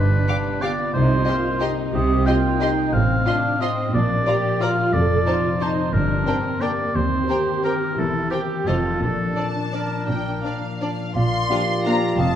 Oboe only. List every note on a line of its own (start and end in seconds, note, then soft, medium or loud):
0.00 0.63 B4 medium
0.62 0.93 D5 medium
0.94 1.65 C5 medium
1.94 2.28 D#5 medium
2.26 2.95 G5 medium
2.93 3.62 F5 medium
3.61 3.93 D#5 medium
3.94 4.63 D5 medium
4.61 4.95 F5 medium
4.93 5.63 D5 medium
5.62 5.95 C5 medium
5.94 6.63 A#4 medium
6.61 6.97 D5 medium
6.95 7.64 C5 medium
7.64 8.00 A#4 medium
7.98 8.30 A4 medium
8.31 8.69 G4 soft
8.67 9.02 A4 soft
9.02 9.48 A4 soft
9.74 10.78 A#4 soft
11.16 12.20 D5 soft
12.19 12.36 D#5 soft